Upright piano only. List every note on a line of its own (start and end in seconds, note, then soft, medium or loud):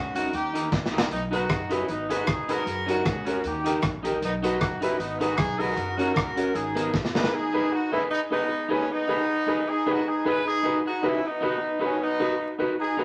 1.32 1.43 D#4 medium
1.32 1.43 F#4 medium
1.32 1.43 B4 loud
1.71 1.82 D#4 medium
1.71 1.82 F#4 medium
1.71 1.82 B4 loud
2.10 2.21 D#4 medium
2.10 2.21 G#4 medium
2.10 2.21 B4 medium
2.49 2.59 D#4 medium
2.49 2.60 G#4 medium
2.49 2.60 B4 loud
2.88 2.98 C#4 medium
2.88 2.99 F#4 medium
2.88 2.99 A#4 loud
3.27 3.37 C#4 medium
3.27 3.38 F#4 medium
3.27 3.38 A#4 loud
3.65 3.76 D#4 medium
3.65 3.76 G4 medium
3.65 3.77 A#4 loud
4.04 4.15 D#4 medium
4.04 4.15 G4 medium
4.04 4.16 A#4 loud
4.43 4.54 D#4 medium
4.43 4.54 F#4 medium
4.43 4.55 B4 loud
4.82 4.93 D#4 medium
4.82 4.93 F#4 medium
4.82 4.93 B4 loud
5.20 5.31 D#4 medium
5.20 5.32 G#4 medium
5.20 5.32 B4 loud
5.59 5.70 D#4 medium
5.59 5.71 G#4 medium
5.59 5.71 B4 loud
5.98 6.09 C#4 medium
5.98 6.10 F#4 medium
5.98 6.10 A#4 loud
6.37 6.48 C#4 medium
6.37 6.48 F#4 medium
6.37 6.48 A#4 loud
6.75 6.86 B3 medium
6.75 6.87 G#4 medium
6.75 6.87 A#4 medium
7.14 7.25 B3 medium
7.14 7.26 G#4 medium
7.14 7.26 A#4 medium
7.53 7.64 D#4 medium
7.53 7.64 G#4 medium
7.53 7.65 B4 loud
7.92 8.03 D#4 medium
7.92 8.04 G#4 medium
7.92 8.04 B4 loud
8.30 8.42 D#4 medium
8.30 8.42 G#4 medium
8.30 8.43 B4 medium
8.69 8.81 D#4 medium
8.69 8.81 G#4 medium
8.69 8.82 B4 loud
9.08 9.20 D#4 medium
9.08 9.20 G#4 medium
9.08 9.20 B4 loud
9.47 9.58 D#4 medium
9.47 9.59 G#4 medium
9.47 9.59 B4 loud
9.86 9.97 D#4 medium
9.86 9.98 G#4 medium
9.86 9.98 B4 loud
10.25 10.36 D#4 medium
10.25 10.36 G#4 medium
10.25 10.37 B4 loud
10.64 10.75 D#4 loud
10.64 10.76 F#4 medium
10.64 10.76 B4 loud
11.02 11.14 D#4 medium
11.02 11.14 F#4 medium
11.02 11.14 B4 loud
11.41 11.53 D#4 medium
11.41 11.53 F#4 medium
11.41 11.54 B4 loud
11.80 11.92 D#4 loud
11.80 11.92 F#4 medium
11.80 11.92 B4 loud
12.19 12.31 D#4 medium
12.19 12.31 F#4 medium
12.19 12.31 B4 loud
12.58 12.70 D#4 medium
12.58 12.70 F#4 medium
12.58 12.70 B4 loud
12.98 13.04 D#4 medium
12.98 13.04 F#4 medium
12.98 13.04 B4 medium